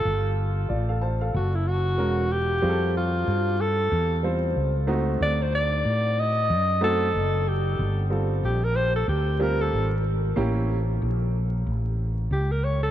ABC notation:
X:1
M:4/4
L:1/16
Q:"Swing 16ths" 1/4=93
K:Gmix
V:1 name="Alto saxophone"
A2 z6 ^F E F4 G2- | G2 F4 A4 z6 | d c d4 _e4 A4 G2- | G2 z2 G _B c A G2 B A2 z3 |
z12 G _B ^c A |]
V:2 name="Upright piano"
z4 [Fd] [Af] [ca] [Af]2 z3 [^G,^C^F^A]2 z2 | [G,CF^GA]6 z4 [=G,CFc]2 z2 [A,C_E^F]2 | z8 z2 [A,C_E^F]2 z4 | z2 [G,CFA]2 z6 [G,CFG]2 z4 |
[_B,^CEG]2 z12 z2 |]
V:3 name="Fretless electric bass" clef=bass
G,,,4 A,,,4 ^F,,,4 E,,,4 | F,,4 G,,4 E,,4 ^C,,4 | D,,4 A,,4 ^F,,4 ^F,,,4 | G,,,4 _B,,,4 D,,4 ^G,,,4 |
A,,,4 _B,,,4 A,,,4 ^C,,4 |]